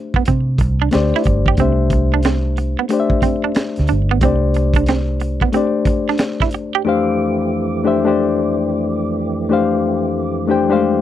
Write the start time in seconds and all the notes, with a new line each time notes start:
Already playing: A3 D4 G4 C5 E5
0.14 B3, kick
0.25 C3 C4, kick, closed hi-hat
0.58 C2, muted clean electric guitar stroke, kick, closed hi-hat
0.82 D4
0.91 D2 A3 D4 G4 C5 D5, finger snap, snare, closed hi-hat
1.15 E4, snare
1.24 G1, muted clean electric guitar stroke, kick, closed hi-hat
1.46 G4, kick
1.57 C2 A3 C4 D4 G4 C5, kick, closed hi-hat
1.62 E5
1.90 muted clean electric guitar stroke, kick, closed hi-hat
2.14 D4
2.23 C4, finger snap, snare, closed hi-hat
2.57 muted clean electric guitar stroke, closed hi-hat
2.79 B3
2.89 A3 D4 G4 C5, muted clean electric guitar stroke, closed hi-hat
2.93 D5
3.00 E5
3.10 kick
3.22 C4, kick, closed hi-hat
3.44 D4
3.55 finger snap, muted clean electric guitar stroke, snare, closed hi-hat
3.76 D2, snare, closed hi-hat
3.87 D4, closed hi-hat
3.92 G1
4.11 B3
4.21 C2 A3 C4 D4 G4 C5, kick, closed hi-hat
4.25 D5
4.54 muted clean electric guitar stroke, closed hi-hat
4.74 D4, kick, closed hi-hat
4.86 C4, finger snap, snare, closed hi-hat
5.20 muted clean electric guitar stroke, closed hi-hat
5.41 B3, kick
5.52 A3 C4 D4 G4 C5, closed hi-hat
5.57 D5
5.85 muted clean electric guitar stroke, kick, closed hi-hat
6.09 D4, snare
6.18 finger snap, snare, closed hi-hat
6.40 E4, kick, snare
6.51 muted clean electric guitar stroke, closed hi-hat
6.75 G4
6.85 F2 E3 A3 D4 G4 C5
6.89 F5
7.84 A3 D4 G4 C5 E5
8.04 A3 D4 G4 C5 D5
9.49 A3 D4 G4 C5 F5
10.47 A3 D4 G4 C5 G5
10.68 G#3 D4 G4 C5
10.73 A3 F5